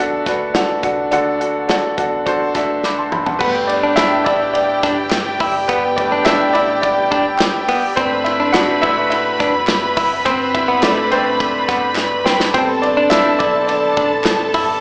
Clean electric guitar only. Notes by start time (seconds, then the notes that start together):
3.41 B3
3.83 D4
3.98 D4
4.26 E4
4.83 D4
5.41 E4
5.69 B3
6.12 D4
6.26 D4
6.54 E4
7.11 D4
7.69 B3
7.97 C4
8.40 D4
8.54 D4
8.83 E4
9.40 D4
9.97 E4
10.25 C4
10.68 B3
10.82 A3
11.12 C4
11.68 B3
12.26 C4
12.54 C4
12.97 D4
13.12 D4
13.40 E4
13.97 D4
14.54 E4